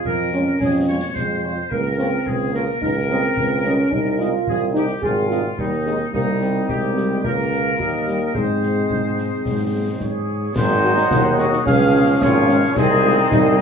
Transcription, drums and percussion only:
0, 0, Header, 1, 2, 480
1, 0, Start_track
1, 0, Key_signature, -4, "major"
1, 0, Tempo, 552486
1, 530, Time_signature, 2, 2, 24, 8
1, 11828, End_track
2, 0, Start_track
2, 0, Title_t, "Drums"
2, 42, Note_on_c, 9, 35, 56
2, 129, Note_off_c, 9, 35, 0
2, 284, Note_on_c, 9, 38, 32
2, 371, Note_off_c, 9, 38, 0
2, 522, Note_on_c, 9, 35, 60
2, 522, Note_on_c, 9, 38, 48
2, 608, Note_off_c, 9, 35, 0
2, 608, Note_off_c, 9, 38, 0
2, 1004, Note_on_c, 9, 35, 55
2, 1004, Note_on_c, 9, 38, 41
2, 1091, Note_off_c, 9, 35, 0
2, 1091, Note_off_c, 9, 38, 0
2, 1488, Note_on_c, 9, 35, 57
2, 1575, Note_off_c, 9, 35, 0
2, 1727, Note_on_c, 9, 38, 31
2, 1814, Note_off_c, 9, 38, 0
2, 1966, Note_on_c, 9, 35, 61
2, 2053, Note_off_c, 9, 35, 0
2, 2207, Note_on_c, 9, 38, 32
2, 2294, Note_off_c, 9, 38, 0
2, 2448, Note_on_c, 9, 35, 66
2, 2535, Note_off_c, 9, 35, 0
2, 2687, Note_on_c, 9, 38, 29
2, 2774, Note_off_c, 9, 38, 0
2, 2928, Note_on_c, 9, 35, 63
2, 3015, Note_off_c, 9, 35, 0
2, 3167, Note_on_c, 9, 38, 32
2, 3254, Note_off_c, 9, 38, 0
2, 3403, Note_on_c, 9, 35, 61
2, 3490, Note_off_c, 9, 35, 0
2, 3648, Note_on_c, 9, 38, 34
2, 3735, Note_off_c, 9, 38, 0
2, 3884, Note_on_c, 9, 35, 58
2, 3971, Note_off_c, 9, 35, 0
2, 4128, Note_on_c, 9, 38, 34
2, 4215, Note_off_c, 9, 38, 0
2, 4364, Note_on_c, 9, 35, 64
2, 4451, Note_off_c, 9, 35, 0
2, 4608, Note_on_c, 9, 38, 32
2, 4695, Note_off_c, 9, 38, 0
2, 4850, Note_on_c, 9, 35, 58
2, 4937, Note_off_c, 9, 35, 0
2, 5090, Note_on_c, 9, 38, 29
2, 5177, Note_off_c, 9, 38, 0
2, 5333, Note_on_c, 9, 35, 62
2, 5420, Note_off_c, 9, 35, 0
2, 5575, Note_on_c, 9, 38, 31
2, 5662, Note_off_c, 9, 38, 0
2, 5813, Note_on_c, 9, 35, 63
2, 5899, Note_off_c, 9, 35, 0
2, 6052, Note_on_c, 9, 38, 35
2, 6139, Note_off_c, 9, 38, 0
2, 6291, Note_on_c, 9, 35, 60
2, 6378, Note_off_c, 9, 35, 0
2, 6533, Note_on_c, 9, 38, 31
2, 6619, Note_off_c, 9, 38, 0
2, 6772, Note_on_c, 9, 35, 59
2, 6858, Note_off_c, 9, 35, 0
2, 7013, Note_on_c, 9, 38, 29
2, 7100, Note_off_c, 9, 38, 0
2, 7250, Note_on_c, 9, 35, 60
2, 7337, Note_off_c, 9, 35, 0
2, 7495, Note_on_c, 9, 38, 29
2, 7582, Note_off_c, 9, 38, 0
2, 7734, Note_on_c, 9, 35, 56
2, 7821, Note_off_c, 9, 35, 0
2, 7975, Note_on_c, 9, 38, 33
2, 8062, Note_off_c, 9, 38, 0
2, 8214, Note_on_c, 9, 35, 59
2, 8214, Note_on_c, 9, 38, 49
2, 8301, Note_off_c, 9, 35, 0
2, 8301, Note_off_c, 9, 38, 0
2, 8692, Note_on_c, 9, 35, 55
2, 8692, Note_on_c, 9, 38, 36
2, 8779, Note_off_c, 9, 35, 0
2, 8779, Note_off_c, 9, 38, 0
2, 9172, Note_on_c, 9, 35, 82
2, 9172, Note_on_c, 9, 38, 80
2, 9172, Note_on_c, 9, 49, 54
2, 9259, Note_off_c, 9, 35, 0
2, 9259, Note_off_c, 9, 38, 0
2, 9259, Note_off_c, 9, 49, 0
2, 9531, Note_on_c, 9, 38, 60
2, 9618, Note_off_c, 9, 38, 0
2, 9650, Note_on_c, 9, 35, 82
2, 9650, Note_on_c, 9, 38, 76
2, 9737, Note_off_c, 9, 35, 0
2, 9737, Note_off_c, 9, 38, 0
2, 9891, Note_on_c, 9, 38, 55
2, 9978, Note_off_c, 9, 38, 0
2, 10013, Note_on_c, 9, 38, 48
2, 10100, Note_off_c, 9, 38, 0
2, 10134, Note_on_c, 9, 35, 80
2, 10134, Note_on_c, 9, 38, 60
2, 10220, Note_off_c, 9, 35, 0
2, 10220, Note_off_c, 9, 38, 0
2, 10612, Note_on_c, 9, 35, 78
2, 10612, Note_on_c, 9, 38, 77
2, 10699, Note_off_c, 9, 35, 0
2, 10699, Note_off_c, 9, 38, 0
2, 10850, Note_on_c, 9, 38, 56
2, 10937, Note_off_c, 9, 38, 0
2, 10971, Note_on_c, 9, 38, 50
2, 11058, Note_off_c, 9, 38, 0
2, 11089, Note_on_c, 9, 35, 78
2, 11089, Note_on_c, 9, 38, 76
2, 11176, Note_off_c, 9, 35, 0
2, 11176, Note_off_c, 9, 38, 0
2, 11447, Note_on_c, 9, 38, 56
2, 11534, Note_off_c, 9, 38, 0
2, 11569, Note_on_c, 9, 35, 82
2, 11569, Note_on_c, 9, 38, 75
2, 11656, Note_off_c, 9, 35, 0
2, 11656, Note_off_c, 9, 38, 0
2, 11828, End_track
0, 0, End_of_file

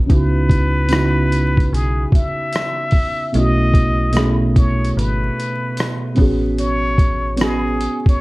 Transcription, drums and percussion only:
0, 0, Header, 1, 2, 480
1, 0, Start_track
1, 0, Key_signature, 4, "minor"
1, 0, Tempo, 810811
1, 57, Time_signature, 4, 2, 24, 8
1, 4860, End_track
2, 0, Start_track
2, 0, Title_t, "Drums"
2, 57, Note_on_c, 9, 36, 111
2, 58, Note_on_c, 9, 42, 69
2, 116, Note_off_c, 9, 36, 0
2, 117, Note_off_c, 9, 42, 0
2, 293, Note_on_c, 9, 36, 91
2, 301, Note_on_c, 9, 42, 64
2, 352, Note_off_c, 9, 36, 0
2, 360, Note_off_c, 9, 42, 0
2, 525, Note_on_c, 9, 42, 84
2, 536, Note_on_c, 9, 54, 65
2, 549, Note_on_c, 9, 37, 110
2, 584, Note_off_c, 9, 42, 0
2, 595, Note_off_c, 9, 54, 0
2, 608, Note_off_c, 9, 37, 0
2, 783, Note_on_c, 9, 42, 77
2, 842, Note_off_c, 9, 42, 0
2, 931, Note_on_c, 9, 36, 81
2, 948, Note_on_c, 9, 42, 48
2, 991, Note_off_c, 9, 36, 0
2, 1007, Note_off_c, 9, 42, 0
2, 1032, Note_on_c, 9, 42, 72
2, 1091, Note_off_c, 9, 42, 0
2, 1256, Note_on_c, 9, 36, 92
2, 1273, Note_on_c, 9, 42, 63
2, 1315, Note_off_c, 9, 36, 0
2, 1332, Note_off_c, 9, 42, 0
2, 1495, Note_on_c, 9, 42, 75
2, 1497, Note_on_c, 9, 54, 56
2, 1513, Note_on_c, 9, 37, 110
2, 1554, Note_off_c, 9, 42, 0
2, 1556, Note_off_c, 9, 54, 0
2, 1573, Note_off_c, 9, 37, 0
2, 1722, Note_on_c, 9, 46, 49
2, 1731, Note_on_c, 9, 36, 87
2, 1782, Note_off_c, 9, 46, 0
2, 1790, Note_off_c, 9, 36, 0
2, 1978, Note_on_c, 9, 42, 71
2, 2037, Note_off_c, 9, 42, 0
2, 2212, Note_on_c, 9, 36, 91
2, 2218, Note_on_c, 9, 42, 62
2, 2272, Note_off_c, 9, 36, 0
2, 2278, Note_off_c, 9, 42, 0
2, 2443, Note_on_c, 9, 42, 84
2, 2455, Note_on_c, 9, 54, 62
2, 2467, Note_on_c, 9, 37, 110
2, 2502, Note_off_c, 9, 42, 0
2, 2515, Note_off_c, 9, 54, 0
2, 2526, Note_off_c, 9, 37, 0
2, 2700, Note_on_c, 9, 36, 84
2, 2701, Note_on_c, 9, 42, 77
2, 2759, Note_off_c, 9, 36, 0
2, 2761, Note_off_c, 9, 42, 0
2, 2868, Note_on_c, 9, 42, 50
2, 2928, Note_off_c, 9, 42, 0
2, 2953, Note_on_c, 9, 42, 72
2, 3012, Note_off_c, 9, 42, 0
2, 3194, Note_on_c, 9, 42, 62
2, 3254, Note_off_c, 9, 42, 0
2, 3416, Note_on_c, 9, 42, 75
2, 3418, Note_on_c, 9, 54, 59
2, 3435, Note_on_c, 9, 37, 108
2, 3476, Note_off_c, 9, 42, 0
2, 3477, Note_off_c, 9, 54, 0
2, 3494, Note_off_c, 9, 37, 0
2, 3645, Note_on_c, 9, 46, 51
2, 3658, Note_on_c, 9, 36, 96
2, 3705, Note_off_c, 9, 46, 0
2, 3717, Note_off_c, 9, 36, 0
2, 3898, Note_on_c, 9, 42, 72
2, 3957, Note_off_c, 9, 42, 0
2, 4133, Note_on_c, 9, 36, 98
2, 4139, Note_on_c, 9, 42, 66
2, 4192, Note_off_c, 9, 36, 0
2, 4198, Note_off_c, 9, 42, 0
2, 4365, Note_on_c, 9, 42, 79
2, 4377, Note_on_c, 9, 54, 65
2, 4388, Note_on_c, 9, 37, 110
2, 4424, Note_off_c, 9, 42, 0
2, 4436, Note_off_c, 9, 54, 0
2, 4448, Note_off_c, 9, 37, 0
2, 4621, Note_on_c, 9, 42, 73
2, 4681, Note_off_c, 9, 42, 0
2, 4772, Note_on_c, 9, 36, 83
2, 4789, Note_on_c, 9, 42, 49
2, 4831, Note_off_c, 9, 36, 0
2, 4848, Note_off_c, 9, 42, 0
2, 4860, End_track
0, 0, End_of_file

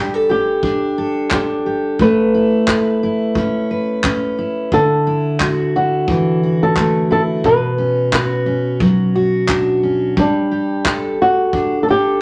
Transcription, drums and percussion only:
0, 0, Header, 1, 2, 480
1, 0, Start_track
1, 0, Key_signature, 2, "major"
1, 0, Tempo, 681044
1, 1410, Time_signature, 4, 2, 24, 8
1, 8610, End_track
2, 0, Start_track
2, 0, Title_t, "Drums"
2, 443, Note_on_c, 9, 36, 99
2, 513, Note_off_c, 9, 36, 0
2, 919, Note_on_c, 9, 39, 107
2, 925, Note_on_c, 9, 36, 103
2, 990, Note_off_c, 9, 39, 0
2, 995, Note_off_c, 9, 36, 0
2, 1405, Note_on_c, 9, 36, 108
2, 1476, Note_off_c, 9, 36, 0
2, 1886, Note_on_c, 9, 39, 110
2, 1887, Note_on_c, 9, 36, 97
2, 1957, Note_off_c, 9, 36, 0
2, 1957, Note_off_c, 9, 39, 0
2, 2364, Note_on_c, 9, 36, 103
2, 2434, Note_off_c, 9, 36, 0
2, 2845, Note_on_c, 9, 39, 103
2, 2847, Note_on_c, 9, 36, 109
2, 2915, Note_off_c, 9, 39, 0
2, 2917, Note_off_c, 9, 36, 0
2, 3326, Note_on_c, 9, 36, 100
2, 3397, Note_off_c, 9, 36, 0
2, 3806, Note_on_c, 9, 39, 105
2, 3808, Note_on_c, 9, 36, 99
2, 3876, Note_off_c, 9, 39, 0
2, 3878, Note_off_c, 9, 36, 0
2, 4284, Note_on_c, 9, 36, 113
2, 4355, Note_off_c, 9, 36, 0
2, 4767, Note_on_c, 9, 36, 105
2, 4767, Note_on_c, 9, 39, 92
2, 4837, Note_off_c, 9, 36, 0
2, 4837, Note_off_c, 9, 39, 0
2, 5245, Note_on_c, 9, 36, 96
2, 5316, Note_off_c, 9, 36, 0
2, 5727, Note_on_c, 9, 36, 101
2, 5729, Note_on_c, 9, 39, 114
2, 5798, Note_off_c, 9, 36, 0
2, 5800, Note_off_c, 9, 39, 0
2, 6204, Note_on_c, 9, 36, 104
2, 6275, Note_off_c, 9, 36, 0
2, 6684, Note_on_c, 9, 39, 102
2, 6687, Note_on_c, 9, 36, 108
2, 6754, Note_off_c, 9, 39, 0
2, 6757, Note_off_c, 9, 36, 0
2, 7168, Note_on_c, 9, 36, 113
2, 7239, Note_off_c, 9, 36, 0
2, 7649, Note_on_c, 9, 36, 102
2, 7651, Note_on_c, 9, 39, 113
2, 7719, Note_off_c, 9, 36, 0
2, 7721, Note_off_c, 9, 39, 0
2, 8127, Note_on_c, 9, 36, 108
2, 8198, Note_off_c, 9, 36, 0
2, 8610, End_track
0, 0, End_of_file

